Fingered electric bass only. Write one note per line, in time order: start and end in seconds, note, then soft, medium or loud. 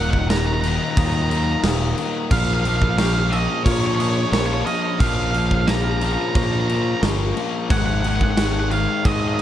0.00 0.78 D#1 loud
0.97 1.55 D#2 loud
1.64 1.93 D#1 loud
2.31 3.46 A#1 loud
3.66 4.23 A#2 loud
4.32 4.61 A#1 loud
5.00 6.16 A#1 medium
6.36 6.93 A#2 loud
7.02 7.31 G1 loud
7.70 8.86 G#1 loud
9.05 9.42 G#2 medium